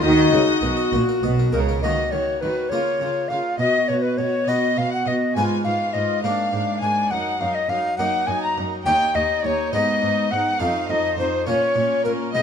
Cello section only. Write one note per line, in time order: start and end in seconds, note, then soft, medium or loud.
0.03 0.32 D#3 medium
0.33 0.41 C#3 medium
0.63 0.71 B2 medium
0.93 1.01 A#2 medium
1.22 1.52 B2 medium
1.53 1.82 C#3 medium
1.83 1.91 D#3 medium
2.13 2.21 D#3 soft
2.42 2.50 D#3 soft
2.71 2.79 C#3 soft
3.00 3.08 C#3 soft
3.30 3.38 C#3 soft
3.59 3.67 B2 medium
3.89 3.97 B2 soft
4.18 4.26 B2 soft
4.48 4.56 B2 soft
4.77 4.85 B2 soft
5.07 5.15 B2 medium
5.36 5.44 G#2 medium
5.65 5.73 G#2 soft
5.95 6.03 G#2 medium
6.24 6.32 G#2 soft
6.53 6.61 G#2 soft
6.82 6.90 G#2 medium
7.11 7.19 F#2 medium
7.40 7.48 F#2 medium
7.69 7.77 F#2 medium
7.99 8.07 F#2 medium
8.27 8.35 F#2 medium
8.57 8.65 F#2 medium
8.86 8.94 D#2 medium
9.16 9.24 D#2 soft
9.44 9.52 D#2 medium
9.73 9.81 G#2 medium
10.03 10.11 G#2 medium
10.31 10.39 G#2 medium
10.61 10.69 F2 medium
10.89 10.97 F2 medium
11.18 11.26 F2 medium
11.48 11.56 A#2 medium
11.76 11.84 A#2 medium
12.06 12.14 A#2 medium
12.35 12.42 B2 medium